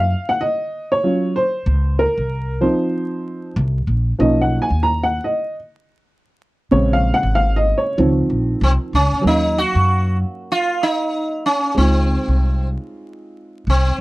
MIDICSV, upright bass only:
0, 0, Header, 1, 2, 480
1, 0, Start_track
1, 0, Key_signature, -5, "major"
1, 0, Tempo, 631579
1, 1268, Time_signature, 4, 2, 24, 8
1, 10646, End_track
2, 0, Start_track
2, 0, Title_t, "Upright bass"
2, 0, Program_c, 0, 32
2, 0, Note_on_c, 0, 42, 103
2, 97, Note_off_c, 0, 42, 0
2, 1263, Note_on_c, 0, 37, 96
2, 1557, Note_off_c, 0, 37, 0
2, 1654, Note_on_c, 0, 36, 86
2, 2016, Note_off_c, 0, 36, 0
2, 2707, Note_on_c, 0, 36, 104
2, 2889, Note_off_c, 0, 36, 0
2, 2943, Note_on_c, 0, 34, 85
2, 3126, Note_off_c, 0, 34, 0
2, 3190, Note_on_c, 0, 35, 103
2, 3481, Note_off_c, 0, 35, 0
2, 3575, Note_on_c, 0, 39, 84
2, 3937, Note_off_c, 0, 39, 0
2, 5106, Note_on_c, 0, 34, 89
2, 5399, Note_off_c, 0, 34, 0
2, 5495, Note_on_c, 0, 32, 95
2, 5857, Note_off_c, 0, 32, 0
2, 6065, Note_on_c, 0, 37, 101
2, 6247, Note_off_c, 0, 37, 0
2, 6306, Note_on_c, 0, 34, 86
2, 6488, Note_off_c, 0, 34, 0
2, 6546, Note_on_c, 0, 36, 105
2, 6658, Note_off_c, 0, 36, 0
2, 6789, Note_on_c, 0, 37, 87
2, 6900, Note_off_c, 0, 37, 0
2, 6933, Note_on_c, 0, 38, 81
2, 7004, Note_off_c, 0, 38, 0
2, 7027, Note_on_c, 0, 39, 85
2, 7319, Note_off_c, 0, 39, 0
2, 7410, Note_on_c, 0, 42, 95
2, 7774, Note_off_c, 0, 42, 0
2, 8947, Note_on_c, 0, 37, 93
2, 9240, Note_off_c, 0, 37, 0
2, 9332, Note_on_c, 0, 36, 96
2, 9695, Note_off_c, 0, 36, 0
2, 10388, Note_on_c, 0, 36, 93
2, 10569, Note_off_c, 0, 36, 0
2, 10646, End_track
0, 0, End_of_file